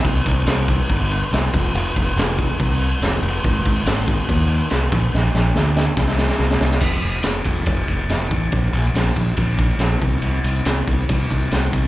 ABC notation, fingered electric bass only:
X:1
M:4/4
L:1/8
Q:1/4=142
K:Bblyd
V:1 name="Fingered electric bass" clef=bass
C,, C,, C,,2 G,,,2 C,, F,,, | F,,, F,,, F,,,2 C,,2 F,,, F,,, | _A,,, A,,, A,,,2 _E,,2 C,, B,,, | B,,, B,,, D,,2 C,,2 C,, C,, |
F,,, F,,, F,,, F,,, F,,, F,,, F,,, A,,, | B,,, B,,, B,,, B,,, B,,,2 B,,, C,, | C,, C,, C,, C,, C,, C,, C,, C,, |]